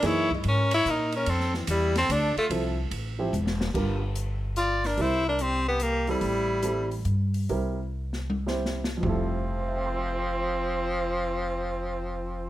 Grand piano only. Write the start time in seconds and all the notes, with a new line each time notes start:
0.03 E3 A#3 D#4 G#4
2.50 F3 C4 E4 A4
3.19 F3 C4 E4 G4
3.74 G3 D4 F4 A#4
4.98 G3 C4 E4 A#4
6.08 G3 C4 E4 A4
6.63 G3 C4 E4 A4
7.49 G3 C4 E4 A#4
8.47 G3 C4 E4 C5
8.97 F2 F3
9.03 G3 E4
9.09 A4
9.62 C5
9.68 E5
9.77 G5
9.86 C6
9.96 E6
10.07 G6
10.19 C7